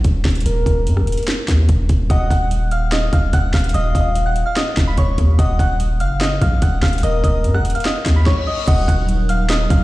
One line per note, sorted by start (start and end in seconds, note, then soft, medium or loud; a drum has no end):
0.04 0.24 D#1 loud
0.04 kick loud
0.04 closed hi-hat medium
0.25 0.45 D#1 loud
0.25 kick loud
0.25 snare medium
0.25 clap medium
0.25 closed hi-hat soft
0.30 closed hi-hat medium
0.35 closed hi-hat medium
0.41 closed hi-hat medium
0.46 0.65 D#1 loud
0.46 1.24 A#4 loud
0.46 closed hi-hat medium
0.66 0.88 D#1 loud
0.66 kick medium
0.66 closed hi-hat medium
0.87 1.04 F#2 loud
0.87 closed hi-hat medium
0.97 cross-stick medium
1.02 1.17 D#1 loud
1.07 closed hi-hat medium
1.12 closed hi-hat medium
1.18 closed hi-hat medium
1.23 closed hi-hat soft
1.28 snare loud
1.28 clap medium
1.28 closed hi-hat medium
1.48 1.68 D#2 loud
1.48 kick loud
1.48 snare medium
1.48 clap medium
1.48 closed hi-hat medium
1.69 1.89 D#1 loud
1.69 kick loud
1.69 closed hi-hat medium
1.89 2.09 D#1 loud
1.89 kick loud
1.89 closed hi-hat medium
2.10 2.30 D#1 loud
2.10 2.27 D#5 medium
2.10 2.49 F#5 loud
2.10 2.26 D#6 medium
2.10 kick loud
2.10 closed hi-hat medium
2.30 3.09 D#1 loud
2.30 2.70 F#5 medium
2.30 2.69 F#6 medium
2.30 kick medium
2.30 closed hi-hat medium
2.51 closed hi-hat medium
2.71 2.89 F5 medium
2.71 2.88 F6 medium
2.71 closed hi-hat medium
2.92 3.09 D#5 medium
2.92 3.09 D#6 medium
2.92 snare loud
2.92 clap medium
2.92 closed hi-hat medium
3.13 3.32 D#1 loud
3.13 3.30 F5 medium
3.13 3.29 F6 medium
3.13 kick loud
3.13 closed hi-hat medium
3.33 3.53 D#1 loud
3.33 3.50 F#5 medium
3.33 3.50 F#6 loud
3.33 kick loud
3.33 closed hi-hat medium
3.54 3.74 D#1 loud
3.54 3.71 F5 medium
3.54 3.70 F6 medium
3.54 kick loud
3.54 snare medium
3.54 clap medium
3.54 closed hi-hat soft
3.59 closed hi-hat medium
3.64 closed hi-hat medium
3.69 closed hi-hat medium
3.74 3.94 D#1 loud
3.74 3.91 D#5 medium
3.74 4.53 F5 loud
3.74 3.91 D#6 loud
3.74 closed hi-hat medium
3.95 4.44 D#1 loud
3.95 4.24 D#5 medium
3.95 4.24 D#6 medium
3.95 kick medium
3.95 closed hi-hat medium
4.15 closed hi-hat medium
4.26 4.43 F#5 medium
4.26 4.42 F#6 medium
4.36 closed hi-hat medium
4.46 4.55 F5 medium
4.46 4.54 F6 medium
4.56 4.86 D#5 medium
4.56 4.86 D#6 loud
4.56 snare loud
4.56 clap medium
4.56 closed hi-hat medium
4.77 4.97 D#1 loud
4.77 kick loud
4.77 snare medium
4.77 clap medium
4.77 closed hi-hat medium
4.88 4.96 B5 medium
4.88 4.96 B6 medium
4.97 5.17 D#1 loud
4.97 5.15 C#5 medium
4.97 5.14 C#6 medium
4.97 kick loud
4.97 closed hi-hat medium
5.18 5.38 D#2 loud
5.18 kick loud
5.18 closed hi-hat medium
5.39 5.58 D#1 loud
5.39 5.56 D#5 medium
5.39 5.77 F#5 loud
5.39 5.55 D#6 medium
5.39 kick loud
5.39 closed hi-hat medium
5.59 6.02 D#1 loud
5.59 5.98 F#5 medium
5.59 5.98 F#6 medium
5.59 kick medium
5.59 closed hi-hat medium
5.80 closed hi-hat medium
6.00 6.39 F#1 loud
6.00 6.17 F5 medium
6.00 6.17 F6 medium
6.00 closed hi-hat medium
6.21 6.38 D#5 medium
6.21 6.37 D#6 medium
6.21 snare loud
6.21 clap medium
6.21 closed hi-hat medium
6.41 6.61 A#1 loud
6.41 6.58 F5 medium
6.41 6.58 F6 medium
6.41 kick loud
6.41 closed hi-hat medium
6.62 6.82 D#1 loud
6.62 6.79 F#5 medium
6.62 6.79 F#6 medium
6.62 kick loud
6.62 closed hi-hat medium
6.83 7.02 D#1 loud
6.83 7.00 F5 medium
6.83 6.99 F6 medium
6.83 kick loud
6.83 snare loud
6.83 clap medium
6.83 closed hi-hat soft
6.88 closed hi-hat medium
6.93 closed hi-hat medium
6.98 closed hi-hat medium
7.03 7.23 D#1 loud
7.03 7.81 A#4 loud
7.03 7.20 D#5 medium
7.03 7.20 D#6 medium
7.03 closed hi-hat medium
7.24 7.46 D#1 loud
7.24 7.53 D#5 medium
7.24 7.53 D#6 medium
7.24 kick medium
7.24 closed hi-hat medium
7.44 7.61 F#2 loud
7.44 closed hi-hat medium
7.54 7.71 F#5 medium
7.54 7.71 F#6 medium
7.54 cross-stick medium
7.60 7.74 D#1 medium
7.65 closed hi-hat medium
7.70 closed hi-hat medium
7.75 7.84 F5 medium
7.75 7.83 F6 medium
7.75 closed hi-hat soft
7.80 closed hi-hat soft
7.85 8.15 D#5 medium
7.85 8.15 D#6 medium
7.85 snare loud
7.85 clap medium
7.85 closed hi-hat medium
7.85 reverse cymbal medium
8.06 8.26 D#2 loud
8.06 kick loud
8.06 snare medium
8.06 clap medium
8.06 closed hi-hat medium
8.16 8.24 B5 medium
8.16 8.25 B6 medium
8.26 8.43 C#5 medium
8.26 8.43 C#6 medium
8.26 kick loud
8.26 snare medium
8.47 8.64 D#5 medium
8.47 8.63 D#6 medium
8.67 8.87 D#1 loud
8.67 9.84 F#3 medium
8.67 9.84 D#4 medium
8.67 9.84 A#4 medium
8.67 8.84 D#5 medium
8.67 9.06 F#5 loud
8.67 8.84 D#6 medium
8.67 kick loud
8.67 closed hi-hat medium
8.67 crash loud
8.88 9.67 D#1 loud
8.88 9.27 F#5 medium
8.88 9.27 F#6 medium
8.88 kick medium
8.88 closed hi-hat medium
9.09 closed hi-hat medium
9.29 9.46 F5 medium
9.29 9.46 F6 medium
9.29 closed hi-hat medium
9.50 9.67 D#5 medium
9.50 9.66 D#6 medium
9.50 snare loud
9.50 clap medium
9.50 closed hi-hat medium
9.70 9.84 D#1 loud
9.70 9.84 F5 medium
9.70 9.84 F6 medium
9.70 kick loud
9.70 closed hi-hat medium